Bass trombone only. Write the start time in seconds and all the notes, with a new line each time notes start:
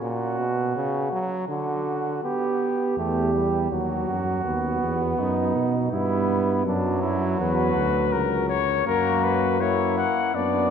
2.97 E2
3.72 D#2
4.09 F#2
4.45 D#2
4.83 E2
5.18 F#2
5.55 B2
5.92 G2
6.65 F#2
7.39 E2
7.75 D2
8.13 C#2
8.86 F#2
10.35 F#2